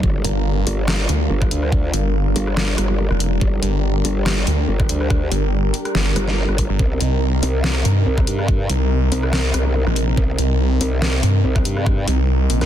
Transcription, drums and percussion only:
0.03 kick loud
0.25 closed hi-hat medium
0.67 open hi-hat loud
0.88 snare loud
1.09 closed hi-hat medium
1.42 kick loud
1.42 cross-stick medium
1.51 closed hi-hat medium
1.63 cross-stick medium
1.72 kick loud
1.94 closed hi-hat medium
2.36 open hi-hat medium
2.47 cross-stick medium
2.57 snare loud
2.78 cross-stick medium
2.78 closed hi-hat medium
3.11 cross-stick medium
3.20 closed hi-hat medium
3.41 kick loud
3.63 closed hi-hat medium
4.05 open hi-hat medium
4.26 snare loud
4.47 closed hi-hat medium
4.80 kick loud
4.80 cross-stick medium
4.89 closed hi-hat medium
5.01 cross-stick medium
5.10 kick loud
5.10 cross-stick medium
5.32 closed hi-hat medium
5.74 open hi-hat medium
5.85 cross-stick medium
5.85 closed hi-hat soft
5.95 snare loud
6.16 cross-stick medium
6.16 closed hi-hat medium
6.28 snare soft
6.49 cross-stick medium
6.58 kick medium
6.58 closed hi-hat medium
6.79 kick loud
7.01 closed hi-hat medium
7.43 open hi-hat medium
7.64 snare loud
7.85 closed hi-hat medium
8.18 kick loud
8.18 cross-stick medium
8.27 closed hi-hat medium
8.39 cross-stick medium
8.48 kick loud
8.70 closed hi-hat medium
9.12 open hi-hat medium
9.23 cross-stick medium
9.33 snare loud
9.54 cross-stick medium
9.54 closed hi-hat medium
9.87 cross-stick medium
9.96 closed hi-hat medium
10.17 kick loud
10.39 closed hi-hat medium
10.81 open hi-hat medium
11.02 snare loud
11.23 closed hi-hat medium
11.56 kick loud
11.56 cross-stick medium
11.65 closed hi-hat medium
11.77 cross-stick medium
11.86 kick loud
11.86 cross-stick medium
12.08 closed hi-hat medium
12.50 open hi-hat loud
12.61 cross-stick medium
12.61 snare soft
12.61 closed hi-hat soft

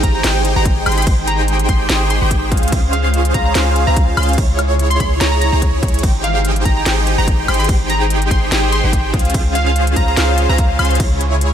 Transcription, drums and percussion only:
0.03 kick medium
0.03 closed hi-hat medium
0.24 snare loud
0.24 closed hi-hat medium
0.24 crash soft
0.45 closed hi-hat medium
0.65 kick loud
0.65 closed hi-hat medium
0.86 closed hi-hat medium
0.86 high woodblock medium
0.92 closed hi-hat medium
0.98 closed hi-hat medium
1.02 closed hi-hat medium
1.07 kick loud
1.07 closed hi-hat medium
1.07 crash soft
1.27 closed hi-hat medium
1.48 closed hi-hat medium
1.59 closed hi-hat medium
1.69 kick medium
1.69 closed hi-hat medium
1.89 snare loud
1.89 closed hi-hat medium
1.89 crash soft
2.10 closed hi-hat medium
2.31 kick medium
2.31 closed hi-hat medium
2.52 kick loud
2.52 closed hi-hat medium
2.57 closed hi-hat medium
2.63 closed hi-hat medium
2.68 closed hi-hat medium
2.72 kick loud
2.72 closed hi-hat medium
2.72 crash soft
2.93 closed hi-hat medium
3.14 closed hi-hat medium
3.25 closed hi-hat medium
3.34 kick medium
3.34 closed hi-hat medium
3.55 snare loud
3.55 closed hi-hat medium
3.55 crash soft
3.76 closed hi-hat medium
3.96 kick loud
3.96 closed hi-hat medium
4.17 closed hi-hat soft
4.17 high woodblock medium
4.23 closed hi-hat medium
4.29 closed hi-hat soft
4.33 closed hi-hat medium
4.38 kick loud
4.38 closed hi-hat medium
4.38 crash medium
4.59 closed hi-hat medium
4.59 high woodblock medium
4.79 closed hi-hat medium
4.91 closed hi-hat medium
5.00 kick medium
5.00 closed hi-hat medium
5.21 snare loud
5.21 closed hi-hat medium
5.21 crash soft
5.42 closed hi-hat medium
5.62 kick medium
5.62 closed hi-hat medium
5.83 kick loud
5.83 closed hi-hat soft
5.88 closed hi-hat medium
5.94 closed hi-hat soft
5.99 closed hi-hat medium
6.03 kick loud
6.03 closed hi-hat medium
6.03 crash medium
6.24 closed hi-hat medium
6.45 closed hi-hat medium
6.56 closed hi-hat medium
6.65 kick medium
6.65 closed hi-hat medium
6.86 snare loud
6.86 closed hi-hat medium
6.86 crash soft
7.07 closed hi-hat medium
7.27 kick loud
7.27 closed hi-hat medium
7.48 closed hi-hat soft
7.48 high woodblock medium
7.54 closed hi-hat medium
7.60 closed hi-hat soft
7.64 closed hi-hat medium
7.69 kick loud
7.69 closed hi-hat medium
7.69 crash soft
7.90 closed hi-hat medium
8.10 closed hi-hat medium
8.22 closed hi-hat medium
8.31 kick medium
8.31 closed hi-hat medium
8.52 snare loud
8.52 closed hi-hat medium
8.52 crash soft
8.72 closed hi-hat medium
8.93 kick medium
8.93 closed hi-hat medium
9.14 kick loud
9.14 closed hi-hat medium
9.19 closed hi-hat medium
9.25 closed hi-hat soft
9.30 closed hi-hat medium
9.34 kick loud
9.34 closed hi-hat medium
9.34 crash medium
9.55 closed hi-hat medium
9.76 closed hi-hat medium
9.87 closed hi-hat medium
9.96 kick medium
9.96 closed hi-hat medium
10.17 snare loud
10.17 closed hi-hat medium
10.17 crash soft
10.38 closed hi-hat medium
10.58 kick loud
10.58 closed hi-hat medium
10.79 closed hi-hat soft
10.79 high woodblock medium
10.85 closed hi-hat medium
10.91 closed hi-hat medium
10.95 closed hi-hat medium
11.00 kick loud
11.00 closed hi-hat medium
11.00 crash medium
11.21 closed hi-hat medium
11.41 closed hi-hat medium

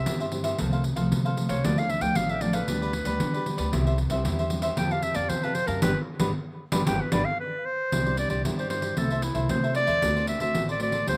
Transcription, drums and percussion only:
0.06 pandeiro medium
0.20 pandeiro soft
0.32 pandeiro medium
0.44 pandeiro medium
0.58 pandeiro medium
0.73 pandeiro soft
0.84 pandeiro medium
0.96 pandeiro medium
1.12 pandeiro medium
1.26 pandeiro soft
1.37 pandeiro medium
1.49 pandeiro medium
1.64 pandeiro medium
1.78 pandeiro soft
1.89 pandeiro medium
2.01 pandeiro medium
2.15 pandeiro medium
2.29 pandeiro soft
2.41 pandeiro medium
2.53 pandeiro medium
2.68 pandeiro medium
2.82 pandeiro soft
2.93 pandeiro medium
3.05 pandeiro medium
3.20 pandeiro medium
3.34 pandeiro soft
3.46 pandeiro medium
3.58 pandeiro medium
3.73 pandeiro medium
3.87 pandeiro soft
3.98 pandeiro medium
4.10 pandeiro medium
4.25 pandeiro medium
4.39 pandeiro soft
4.50 pandeiro medium
4.62 pandeiro medium
4.77 pandeiro medium
4.91 pandeiro soft
5.02 pandeiro medium
5.15 pandeiro medium
5.29 pandeiro medium
5.43 pandeiro soft
5.55 pandeiro medium
5.67 pandeiro medium
5.82 pandeiro loud
6.20 pandeiro loud
6.72 pandeiro loud
6.87 pandeiro loud
7.12 pandeiro loud
7.92 pandeiro medium
8.06 pandeiro soft
8.17 pandeiro medium
8.30 pandeiro medium
8.45 pandeiro medium
8.59 pandeiro soft
8.70 pandeiro medium
8.82 pandeiro medium
8.97 pandeiro medium
9.10 pandeiro soft
9.22 pandeiro medium
9.35 pandeiro medium
9.49 pandeiro medium
9.64 pandeiro soft
9.75 pandeiro medium
9.87 pandeiro soft
10.02 pandeiro medium
10.17 pandeiro soft
10.27 pandeiro medium
10.40 pandeiro medium
10.55 pandeiro medium
10.69 pandeiro soft
10.80 pandeiro medium
10.92 pandeiro medium
11.07 pandeiro medium

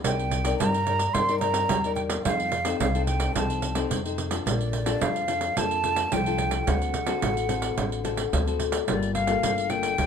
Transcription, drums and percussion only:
0.04 pandeiro medium
0.19 pandeiro soft
0.31 pandeiro medium
0.45 pandeiro medium
0.60 pandeiro medium
0.74 pandeiro soft
0.87 pandeiro medium
0.99 pandeiro medium
1.14 pandeiro medium
1.29 pandeiro soft
1.41 pandeiro medium
1.54 pandeiro medium
1.69 pandeiro medium
1.84 pandeiro soft
1.96 pandeiro soft
2.10 pandeiro medium
2.25 pandeiro medium
2.40 pandeiro soft
2.52 pandeiro medium
2.65 pandeiro medium
2.80 pandeiro medium
2.95 pandeiro soft
3.07 pandeiro medium
3.20 pandeiro medium
3.35 pandeiro medium
3.50 pandeiro soft
3.62 pandeiro medium
3.75 pandeiro medium
3.91 pandeiro medium
4.06 pandeiro soft
4.18 pandeiro medium
4.31 pandeiro medium
4.47 pandeiro medium
4.61 pandeiro soft
4.73 pandeiro medium
4.86 pandeiro medium
5.01 pandeiro medium
5.16 pandeiro soft
5.28 pandeiro medium
5.41 pandeiro medium
5.57 pandeiro medium
5.71 pandeiro soft
5.84 pandeiro medium
5.96 pandeiro medium
6.12 pandeiro medium
6.26 pandeiro soft
6.38 pandeiro medium
6.51 pandeiro medium
6.67 pandeiro medium
6.82 pandeiro soft
6.94 pandeiro medium
7.07 pandeiro medium
7.22 pandeiro medium
7.37 pandeiro soft
7.49 pandeiro medium
7.62 pandeiro medium
7.78 pandeiro medium
7.92 pandeiro soft
8.05 pandeiro medium
8.17 pandeiro medium
8.33 pandeiro medium
8.48 pandeiro soft
8.59 pandeiro medium
8.72 pandeiro medium
8.88 pandeiro medium
9.03 pandeiro soft
9.15 pandeiro medium
9.27 pandeiro medium
9.43 pandeiro medium
9.58 pandeiro soft
9.70 pandeiro medium
9.83 pandeiro medium
9.98 pandeiro medium

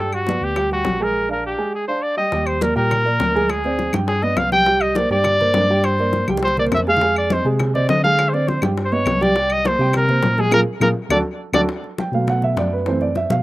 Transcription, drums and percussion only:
0.13 high conga soft
0.13 claves medium
0.27 high bongo medium
0.27 high conga medium
0.43 high conga soft
0.56 high bongo medium
0.56 high conga soft
0.56 claves medium
0.71 high conga soft
0.85 high bongo medium
0.85 low bongo medium
0.85 high conga medium
2.32 high bongo medium
2.32 high conga soft
2.47 high conga soft
2.47 claves medium
2.61 high bongo medium
2.61 high conga medium
2.77 high conga soft
2.91 high bongo medium
2.91 high conga soft
2.91 low conga medium
2.91 claves medium
3.07 high conga soft
3.20 high bongo medium
3.20 low bongo medium
3.20 high conga medium
3.37 high conga medium
3.50 high bongo medium
3.50 high conga soft
3.50 claves medium
3.64 high bongo soft
3.64 high conga soft
3.79 high bongo medium
3.79 high conga medium
3.93 high conga medium
3.93 claves medium
4.08 high bongo medium
4.08 high conga soft
4.23 high bongo soft
4.23 high conga soft
4.37 high bongo medium
4.37 low bongo medium
4.37 high conga medium
4.37 claves medium
4.52 high bongo soft
4.52 high conga medium
4.66 high bongo medium
4.66 high conga soft
4.81 high conga soft
4.81 claves medium
4.95 high bongo medium
4.95 high conga medium
5.11 high conga soft
5.24 high bongo medium
5.24 high conga soft
5.24 low conga medium
5.24 claves medium
5.41 high conga soft
5.41 low conga medium
5.54 high bongo medium
5.54 low bongo loud
5.54 high conga medium
5.84 high bongo medium
5.84 high conga soft
5.84 claves medium
5.98 high bongo soft
5.98 high conga soft
6.13 high bongo medium
6.13 high conga medium
6.28 high conga medium
6.28 claves medium
6.37 high conga medium
6.43 high bongo medium
6.48 low conga medium
6.57 high bongo soft
6.57 low conga medium
6.66 low conga medium
6.72 high bongo medium
6.72 low bongo medium
6.72 claves medium
6.77 low conga medium
6.87 high bongo soft
6.97 low conga loud
7.01 high bongo medium
7.01 high conga soft
7.16 high conga soft
7.16 claves medium
7.30 high bongo medium
7.30 high conga medium
7.45 high conga soft
7.59 high bongo medium
7.59 high conga soft
7.59 low conga medium
7.59 claves medium
7.75 high conga soft
7.75 low conga medium
7.89 high bongo medium
7.89 low bongo medium
7.89 high conga medium
8.04 high conga medium
8.19 high bongo medium
8.19 high conga soft
8.19 claves medium
8.34 high bongo soft
8.34 high conga soft
8.48 high bongo medium
8.48 high conga medium
8.62 high conga loud
8.62 claves medium
8.77 high bongo medium
8.77 high conga soft
8.92 high bongo soft
8.92 high conga soft
9.06 high bongo medium
9.06 low bongo medium
9.06 high conga medium
9.06 claves medium
9.21 high bongo soft
9.21 high conga medium
9.36 high bongo medium
9.36 high conga soft
9.50 high conga soft
9.50 claves medium
9.65 high bongo medium
9.65 high conga medium
9.80 high conga soft
9.93 high bongo medium
9.93 high conga soft
9.93 low conga medium
9.93 claves medium
10.09 high conga soft
10.09 low conga medium
10.23 high bongo medium
10.23 low bongo medium
10.23 high conga medium
10.38 high conga medium
10.52 low bongo loud
10.52 high conga medium
10.52 claves loud
10.81 low bongo loud
10.81 high conga loud
10.81 claves loud
11.10 low bongo loud
11.10 high conga medium
11.10 claves loud
11.54 low bongo loud
11.54 high conga loud
11.54 claves loud
11.69 high bongo medium
11.69 high conga soft
11.84 high conga soft
11.98 high bongo medium
11.98 high conga loud
12.13 high conga soft
12.27 high bongo medium
12.27 high conga soft
12.27 low conga medium
12.42 high conga soft
12.42 low conga medium
12.57 high bongo medium
12.57 low bongo medium
12.57 high conga medium
12.86 high bongo medium
12.86 high conga soft
13.01 high bongo soft
13.01 high conga soft
13.15 high bongo medium
13.15 high conga medium
13.30 high conga loud

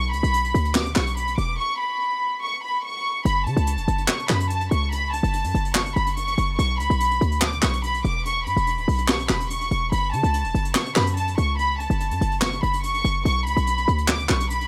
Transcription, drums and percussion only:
0.13 closed hi-hat medium
0.24 closed hi-hat medium
0.33 closed hi-hat medium
0.44 closed hi-hat medium
0.55 closed hi-hat medium
0.65 closed hi-hat medium
0.75 snare loud
0.75 clap medium
0.86 closed hi-hat medium
0.96 snare loud
0.96 clap medium
1.07 closed hi-hat medium
1.17 closed hi-hat medium
1.27 closed hi-hat medium
1.38 closed hi-hat medium
3.25 closed hi-hat medium
3.46 closed hi-hat medium
3.57 closed hi-hat medium
3.67 closed hi-hat medium
3.78 closed hi-hat medium
3.88 closed hi-hat medium
3.98 closed hi-hat medium
4.08 snare loud
4.08 clap medium
4.19 closed hi-hat medium
4.29 snare loud
4.29 clap medium
4.40 closed hi-hat medium
4.50 closed hi-hat medium
4.61 closed hi-hat medium
4.71 closed hi-hat medium
4.92 closed hi-hat medium
5.13 closed hi-hat medium
5.24 closed hi-hat medium
5.33 closed hi-hat medium
5.44 closed hi-hat medium
5.55 closed hi-hat medium
5.65 closed hi-hat medium
5.75 snare loud
5.75 clap medium
5.86 closed hi-hat medium
5.96 closed hi-hat medium
6.07 closed hi-hat medium
6.17 closed hi-hat medium
6.27 closed hi-hat medium
6.38 closed hi-hat medium
6.59 closed hi-hat medium
6.80 closed hi-hat medium
6.90 closed hi-hat medium
7.00 closed hi-hat loud
7.11 closed hi-hat medium
7.21 closed hi-hat medium
7.32 closed hi-hat medium
7.41 snare loud
7.41 clap medium
7.53 closed hi-hat medium
7.62 snare loud
7.62 clap medium
7.73 closed hi-hat medium
7.83 closed hi-hat medium
7.94 closed hi-hat medium
8.04 closed hi-hat medium
8.25 closed hi-hat medium
8.46 closed hi-hat medium
8.57 closed hi-hat medium
8.67 closed hi-hat medium
8.78 closed hi-hat medium
8.88 open hi-hat medium
8.98 closed hi-hat medium
9.08 snare loud
9.08 clap medium
9.19 closed hi-hat medium
9.29 snare loud
9.29 clap medium
9.40 closed hi-hat medium
9.50 closed hi-hat medium
9.61 closed hi-hat medium
9.71 closed hi-hat medium
9.92 closed hi-hat medium
10.13 closed hi-hat medium
10.24 closed hi-hat medium
10.33 closed hi-hat medium
10.44 closed hi-hat medium
10.55 closed hi-hat medium
10.65 closed hi-hat medium
10.75 snare loud
10.75 clap medium
10.86 closed hi-hat medium
10.96 snare loud
10.96 clap medium
11.07 closed hi-hat medium
11.17 closed hi-hat medium
11.27 closed hi-hat medium
11.38 closed hi-hat medium
11.59 closed hi-hat medium
11.80 closed hi-hat medium
11.90 closed hi-hat medium
12.00 closed hi-hat medium
12.11 closed hi-hat medium
12.21 closed hi-hat medium
12.31 closed hi-hat medium
12.41 snare loud
12.41 clap medium
12.53 closed hi-hat medium
12.63 closed hi-hat medium
12.73 closed hi-hat medium
12.83 closed hi-hat medium
12.94 closed hi-hat medium
13.04 closed hi-hat medium
13.25 closed hi-hat medium
13.47 closed hi-hat medium
13.57 closed hi-hat medium
13.67 closed hi-hat medium
13.78 closed hi-hat medium
13.88 closed hi-hat medium
13.98 closed hi-hat medium
14.08 snare loud
14.08 clap loud
14.19 closed hi-hat medium
14.29 snare loud
14.29 clap medium
14.40 closed hi-hat medium
14.50 closed hi-hat medium
14.61 closed hi-hat medium

